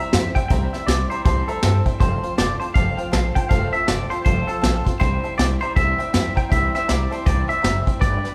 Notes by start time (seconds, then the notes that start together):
Already playing: E5
0.00 G3 C4 E4 C5
0.12 F2 G3 C4 E4 C5 E5 G5, snare, closed hi-hat
0.35 G3 C4 E4 C5 E5 G5, muted upright bass stroke, kick, closed hi-hat
0.48 C2 C3 E3 G3 C4 E4 C5 E5 G5 A#5, kick, closed hi-hat
0.73 G3 C4 E4 C5 E5 G5, muted upright bass stroke, snare, closed hi-hat
0.87 C2 G3 C4 E4 C5 D5 E5 G5, snare, closed hi-hat
1.10 G3 C4 E4 C5 E5 A#5, muted upright bass stroke, closed hi-hat
1.25 C2 C3 E3 G3 C4 E4 C5 E5 A5, kick, closed hi-hat
1.48 G3 C4 E4 A4 C5 E5 A#5, muted upright bass stroke, closed hi-hat
1.63 G2 G3 C4 E4 C5 E5 G5, snare, closed hi-hat
1.86 G3 C4 E4 C5 E5 G5, muted upright bass stroke, kick, closed hi-hat
1.99 F1 F3 A3 C4 F4 C5 F5 A5, kick, closed hi-hat
2.23 C4 F4 C5 F5 C6, muted upright bass stroke, closed hi-hat
2.38 F1 A3 C4 F4 C5 D5 F5 A5, snare, closed hi-hat
2.60 C4 F4 C5 F5 A5, muted upright bass stroke, closed hi-hat
2.74 F1 F3 A3 C4 F4 C5 F5 A5, kick, closed hi-hat
2.97 C4 F4 C5 F5 G5, muted upright bass stroke, closed hi-hat
3.11 A#1 A3 C4 F4 C5 F5 A5, snare, closed hi-hat
3.35 C4 F4 C5 F5 G5 A5, muted upright bass stroke, kick, closed hi-hat
3.49 F1 F3 A3 C4 F4 C5 F5 A5, kick, closed hi-hat
3.72 C4 F4 C5 E5 F5 A5, muted upright bass stroke, closed hi-hat
3.87 F1 A3 C4 F4 C5 D5 F5 A5, snare, closed hi-hat
4.10 C4 F4 C5 F5 A5, muted upright bass stroke, closed hi-hat
4.25 F1 F3 A3 C4 F4 C5 F5 A5, kick, closed hi-hat
4.47 C4 F4 A4 C5 F5 A5, muted upright bass stroke, closed hi-hat
4.61 A#1 A3 C4 F4 C5 F5 A5, snare, closed hi-hat
4.84 C4 F4 C5 F5 C6, muted upright bass stroke, kick, closed hi-hat
4.99 C2 C3 E3 G3 C4 E4 C5 E5 G5, kick, closed hi-hat
5.23 G3 C4 E4 C5 E5 A5, muted upright bass stroke, closed hi-hat
5.37 C2 G3 C4 E4 C5 D5 E5 G5, snare, closed hi-hat
5.60 G3 C4 E4 C5 E5 A#5, muted upright bass stroke, closed hi-hat
5.75 C2 C3 E3 G3 C4 E4 C5 E5 G5, kick, closed hi-hat
5.98 G3 C4 E4 C5 E5 G5, muted upright bass stroke, closed hi-hat
6.13 F2 G3 C4 E4 C5 E5 G5, snare, closed hi-hat
6.35 G3 C4 E4 C5 E5 G5 A#5, muted upright bass stroke, kick, closed hi-hat
6.50 C2 C3 E3 G3 C4 E4 C5 E5 G5, kick, closed hi-hat
6.74 G3 C4 E4 C5 E5 G5, muted upright bass stroke, snare, closed hi-hat
6.88 C2 G3 C4 E4 C5 D5 E5 A#5, snare, closed hi-hat
7.10 C4 E4 C5 E5 A5, muted upright bass stroke, closed hi-hat
7.14 G3
7.25 C2 C3 E3 G3 C4 E4 C5 D5 E5 G5, kick, closed hi-hat
7.48 E4 C5 E5 G5, muted upright bass stroke, closed hi-hat
7.52 G3 C4
7.62 F#1 G3 C4 C5 E5 A#5, snare, closed hi-hat
7.66 E4 C5
7.86 C4 E4 C5 E5 G5, muted upright bass stroke, kick, closed hi-hat
7.90 G3
8.00 G1 G3 D4 G4 B4 D5 G5, kick, closed hi-hat
8.24 D4 G4 B4 D5 G5, muted upright bass stroke, snare, closed hi-hat